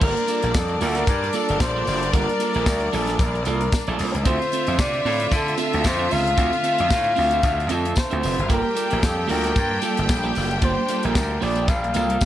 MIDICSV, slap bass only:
0, 0, Header, 1, 2, 480
1, 0, Start_track
1, 0, Tempo, 530504
1, 7, Time_signature, 4, 2, 24, 8
1, 11085, End_track
2, 0, Start_track
2, 0, Title_t, "Slap bass"
2, 0, Program_c, 0, 36
2, 18, Note_on_c, 0, 31, 109
2, 122, Note_off_c, 0, 31, 0
2, 391, Note_on_c, 0, 34, 99
2, 473, Note_off_c, 0, 34, 0
2, 496, Note_on_c, 0, 41, 105
2, 686, Note_off_c, 0, 41, 0
2, 738, Note_on_c, 0, 38, 83
2, 927, Note_off_c, 0, 38, 0
2, 975, Note_on_c, 0, 43, 98
2, 1166, Note_off_c, 0, 43, 0
2, 1355, Note_on_c, 0, 31, 95
2, 1435, Note_off_c, 0, 31, 0
2, 1452, Note_on_c, 0, 34, 88
2, 1644, Note_off_c, 0, 34, 0
2, 1698, Note_on_c, 0, 30, 90
2, 1887, Note_off_c, 0, 30, 0
2, 1936, Note_on_c, 0, 31, 101
2, 2042, Note_off_c, 0, 31, 0
2, 2312, Note_on_c, 0, 34, 104
2, 2394, Note_off_c, 0, 34, 0
2, 2412, Note_on_c, 0, 38, 96
2, 2604, Note_off_c, 0, 38, 0
2, 2656, Note_on_c, 0, 34, 88
2, 2846, Note_off_c, 0, 34, 0
2, 2893, Note_on_c, 0, 34, 105
2, 3084, Note_off_c, 0, 34, 0
2, 3137, Note_on_c, 0, 36, 86
2, 3326, Note_off_c, 0, 36, 0
2, 3507, Note_on_c, 0, 34, 95
2, 3591, Note_off_c, 0, 34, 0
2, 3619, Note_on_c, 0, 36, 88
2, 3723, Note_off_c, 0, 36, 0
2, 3749, Note_on_c, 0, 37, 96
2, 3832, Note_off_c, 0, 37, 0
2, 3853, Note_on_c, 0, 38, 94
2, 3959, Note_off_c, 0, 38, 0
2, 4232, Note_on_c, 0, 41, 99
2, 4314, Note_off_c, 0, 41, 0
2, 4338, Note_on_c, 0, 48, 107
2, 4527, Note_off_c, 0, 48, 0
2, 4572, Note_on_c, 0, 45, 91
2, 4764, Note_off_c, 0, 45, 0
2, 4811, Note_on_c, 0, 50, 115
2, 5003, Note_off_c, 0, 50, 0
2, 5193, Note_on_c, 0, 38, 100
2, 5296, Note_off_c, 0, 38, 0
2, 5296, Note_on_c, 0, 41, 99
2, 5486, Note_off_c, 0, 41, 0
2, 5540, Note_on_c, 0, 37, 83
2, 5728, Note_off_c, 0, 37, 0
2, 5772, Note_on_c, 0, 38, 101
2, 5879, Note_off_c, 0, 38, 0
2, 6153, Note_on_c, 0, 41, 97
2, 6234, Note_off_c, 0, 41, 0
2, 6253, Note_on_c, 0, 45, 100
2, 6444, Note_off_c, 0, 45, 0
2, 6499, Note_on_c, 0, 38, 87
2, 6688, Note_off_c, 0, 38, 0
2, 6729, Note_on_c, 0, 38, 102
2, 6922, Note_off_c, 0, 38, 0
2, 6976, Note_on_c, 0, 41, 92
2, 7166, Note_off_c, 0, 41, 0
2, 7351, Note_on_c, 0, 38, 85
2, 7433, Note_off_c, 0, 38, 0
2, 7459, Note_on_c, 0, 29, 87
2, 7563, Note_off_c, 0, 29, 0
2, 7591, Note_on_c, 0, 30, 92
2, 7693, Note_off_c, 0, 30, 0
2, 7693, Note_on_c, 0, 31, 102
2, 7800, Note_off_c, 0, 31, 0
2, 8076, Note_on_c, 0, 34, 95
2, 8156, Note_off_c, 0, 34, 0
2, 8174, Note_on_c, 0, 41, 99
2, 8365, Note_off_c, 0, 41, 0
2, 8418, Note_on_c, 0, 38, 82
2, 8608, Note_off_c, 0, 38, 0
2, 8654, Note_on_c, 0, 43, 107
2, 8845, Note_off_c, 0, 43, 0
2, 9035, Note_on_c, 0, 31, 106
2, 9116, Note_off_c, 0, 31, 0
2, 9136, Note_on_c, 0, 34, 89
2, 9326, Note_off_c, 0, 34, 0
2, 9381, Note_on_c, 0, 30, 87
2, 9570, Note_off_c, 0, 30, 0
2, 9615, Note_on_c, 0, 31, 110
2, 9721, Note_off_c, 0, 31, 0
2, 9995, Note_on_c, 0, 34, 102
2, 10076, Note_off_c, 0, 34, 0
2, 10093, Note_on_c, 0, 38, 93
2, 10285, Note_off_c, 0, 38, 0
2, 10334, Note_on_c, 0, 34, 88
2, 10525, Note_off_c, 0, 34, 0
2, 10573, Note_on_c, 0, 34, 103
2, 10765, Note_off_c, 0, 34, 0
2, 10818, Note_on_c, 0, 36, 96
2, 11008, Note_off_c, 0, 36, 0
2, 11085, End_track
0, 0, End_of_file